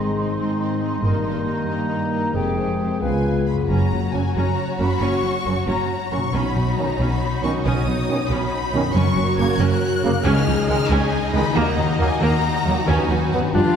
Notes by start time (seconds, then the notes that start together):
Already playing: G#1 G#2 D#3 G#3 C4 D#4 D#5 C6
0.16 C4 D#4 D#5
0.36 G#2 C4 D#4 D#5
0.58 C4 D#4 D#5
0.80 C4 D#4 D#5
1.01 G1 G2 D#3 G3 A#3 D#4 A#4 D#5
1.22 A#3 D#4 D#5
1.45 A#3 D#4 D#5
1.67 G2 A#3 D#4 D#5 A#5
1.87 A#3 D#4 D#5
2.11 A#3 D#4 D#5
2.31 F1 F2 C3 G#3 C4 G4 G#4 C5 G5
2.54 G#3 C5
2.59 G4
2.77 G#3 F4 G4 C5
3.01 C#2 C#3 G#3 B3 F4 B4 F5 G#5
3.23 G#3 F4 B4
3.46 G#3 F4 B4 B5
3.52 F#2
3.56 A#3
3.61 F#4
3.65 F#4 C#5 A#5
3.69 F#1 F#2 C#4 F#4
3.91 F#1 F#2 F#3
4.12 F#1 F#2 F#3 A#3 C#4 G#5
4.35 F#1 F#2 C#4 A#5
4.78 F#1 F#2 F#3 A#3 C#4 B5
5.00 F#1 F#2 C#4 C#6
5.23 F#1 F#2 F#3
5.44 F#1 F#2 F#3 A#3 C#4
5.66 F#1 F#2 C#4 A#5
6.11 F#1 F#2 F#3 A#3 C#4 C#6
6.16 B2
6.21 D#4
6.25 F#4
6.30 B1 B2 C#4 D#4 F#4 C#5
6.34 C#5 B5
6.55 B1 B2 F#3
6.77 B1 B2 D#3 B3 C#4 A#5
6.99 B1 B2 C#4 B5
7.42 B1 B2 D#3 B3 C#4 C#6
7.64 B1 B2 C#4 D#6
7.85 B1 B2 F#3
8.07 B1 B2 D#3 B3 C#4
8.29 B1 B2 C#4 B5
8.72 B1 B2 D#3 B3 C#4
8.77 F#2
8.81 C#4
8.86 A#4
8.90 F#1 A#4 C#5 C#6
8.95 F#2 C#4 F#4
9.15 F#1 F#2 F#3
9.37 F#1 F#2 C#3 A#3 G#6
9.58 F#1 F#2 C#4 F#6
10.03 F#1 F#2 C#3 A#3
10.08 C#3
10.12 C#4
10.16 G#4
10.20 C#2 C#4 D#4 D#5
10.25 C#2 G#4 D#5 F6
10.46 C#2 F3
10.67 C#2 D#3 G#3 F6
10.89 C#2 C#4 G#5
11.32 C#2 D#3 G#3 B5
11.39 D#3
11.43 A#3
11.48 F#4
11.52 D#2 A#3 D#5 A#5
11.56 F#4
11.77 D#2 D#3
11.98 D#2 F#3 A#3 G#5
12.20 D#2 A#3 A#5
12.65 D#2 F#3 A#3
12.70 D#3 C#4
12.79 F#4
12.84 D#2 C#4 D#4 B4
12.88 B4 G#5
13.09 D#2 F#3
13.31 D#2 F#3 B3 F#5
13.36 G2
13.41 D4
13.45 G4
13.49 D4 B4 F5
13.53 G1 G2 F3 D4 F4 G4